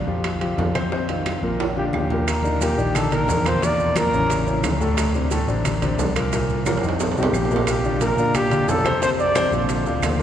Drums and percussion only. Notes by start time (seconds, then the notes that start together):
0.08 high conga
0.24 high bongo, high conga, high timbale, claves
0.41 high bongo, high conga, high timbale
0.58 high bongo, low bongo, high conga, low timbale
0.75 high bongo, high conga, high timbale, claves
0.92 high bongo, high conga
1.09 high bongo, high conga, high timbale
1.26 high bongo, high conga, high timbale, low timbale, claves
1.43 high conga
1.60 high bongo, high conga, high timbale
1.77 high bongo, high conga
1.93 high bongo, low bongo, high conga, low timbale, claves
2.10 high bongo, high conga, low timbale
2.28 high bongo, high conga, high timbale, claves, maracas
2.44 high conga, maracas
2.61 high bongo, high conga, high timbale, low timbale, maracas
2.78 high conga, maracas
2.95 high bongo, high conga, low conga, high timbale, claves, maracas
3.11 high bongo, high conga, low conga, high timbale, maracas
3.28 high bongo, low bongo, high conga, low timbale, maracas
3.45 high bongo, high conga, high timbale, claves, maracas
3.62 high bongo, high conga, high timbale, maracas
3.79 high conga, maracas
3.96 high bongo, high conga, high timbale, low timbale, claves, maracas
4.13 high conga, maracas
4.30 high bongo, high conga, high timbale, maracas
4.46 high bongo, high conga, maracas
4.63 high bongo, low bongo, high conga, high timbale, low timbale, claves, maracas
4.81 high bongo, maracas
4.97 high bongo, high conga, high timbale, claves, maracas
5.14 high conga, maracas
5.31 high bongo, high conga, high timbale, low timbale, maracas
5.48 high conga, maracas
5.65 high bongo, high conga, low conga, high timbale, claves, maracas
5.82 high bongo, high conga, low conga, high timbale, maracas
5.99 high bongo, low bongo, high conga, low timbale, maracas
6.16 high bongo, high conga, high timbale, claves, maracas
6.33 high bongo, high conga, high timbale, maracas
6.49 high conga, maracas
6.66 high bongo, high conga, high timbale, claves, maracas
6.77 high timbale
6.83 high conga, maracas
6.89 high timbale
7.00 high bongo, high conga, low timbale, maracas
7.12 low timbale
7.16 high bongo, high conga, maracas
7.23 low timbale
7.33 high bongo, low bongo, high conga, claves, maracas
7.45 low timbale
7.51 high bongo, maracas
7.56 low timbale
7.67 high bongo, high conga, high timbale, claves, maracas
7.84 high conga, maracas
8.01 high bongo, high conga, high timbale, low timbale, maracas
8.18 high conga, maracas
8.34 high bongo, high conga, low conga, high timbale, claves, maracas
8.51 high bongo, high conga, low conga, high timbale, maracas
8.68 high bongo, low bongo, high conga, low timbale, maracas
8.85 high bongo, high conga, high timbale, claves, maracas
9.02 high bongo, high conga, high timbale, maracas
9.19 high conga, maracas
9.35 high bongo, high conga, high timbale, low timbale, claves, maracas
9.52 high conga, maracas
9.69 high bongo, high conga, high timbale, maracas
9.86 high bongo, high conga, maracas
10.03 high bongo, low bongo, high conga, high timbale, low timbale, claves, maracas